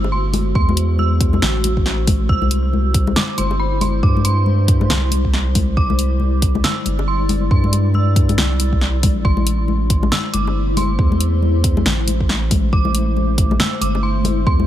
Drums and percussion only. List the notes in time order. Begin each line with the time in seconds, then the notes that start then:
0.04 high bongo
0.33 open hi-hat, high bongo, high conga
0.55 kick
0.69 high conga
0.77 closed hi-hat
0.99 high conga
1.21 kick, closed hi-hat
1.33 high bongo, high conga
1.42 snare, low conga
1.64 closed hi-hat, high conga
1.77 kick
1.86 snare
2.07 kick, open hi-hat, high conga
2.29 kick
2.42 high conga
2.51 closed hi-hat
2.73 high conga
2.94 kick, closed hi-hat
3.07 high bongo, high conga
3.16 snare, low conga
3.38 closed hi-hat, high conga
3.51 high bongo
3.81 open hi-hat, high bongo, high conga
4.03 kick
4.17 high conga
4.25 closed hi-hat
4.46 high conga
4.68 kick, closed hi-hat
4.81 high bongo, high conga
4.90 snare, low conga
5.11 closed hi-hat, high conga
5.25 kick
5.34 snare
5.55 kick, open hi-hat, high conga
5.77 kick
5.90 high conga
5.99 closed hi-hat
6.20 high conga
6.42 kick, closed hi-hat
6.55 high bongo, high conga
6.64 snare, low conga
6.85 closed hi-hat, high conga
6.99 high bongo
7.29 open hi-hat, high bongo, high conga
7.51 kick
7.64 high conga
7.73 closed hi-hat, high bongo
7.94 high conga
8.16 kick, closed hi-hat
8.29 closed hi-hat, high bongo, high conga
8.38 snare, low conga
8.59 closed hi-hat, high conga
8.73 kick
8.81 snare
9.03 kick, open hi-hat, high conga
9.25 kick
9.37 high conga
9.47 closed hi-hat
9.68 high conga
9.90 kick, closed hi-hat
10.03 high bongo, high conga
10.12 snare, low conga
10.34 closed hi-hat, high conga
10.47 high bongo
10.77 open hi-hat, high bongo, high conga
10.99 kick
11.12 high conga
11.21 closed hi-hat
11.42 high conga
11.64 kick, closed hi-hat
11.77 high bongo, high conga
11.86 snare, low conga
12.08 closed hi-hat, high conga
12.20 kick
12.29 snare
12.51 kick, open hi-hat, high conga
12.73 kick
12.85 high conga
12.95 closed hi-hat
13.17 high conga
13.38 kick, closed hi-hat
13.51 high bongo, high conga
13.60 snare, low conga
13.81 closed hi-hat, high conga
13.95 high bongo
14.25 open hi-hat, high bongo, high conga
14.47 kick
14.60 high conga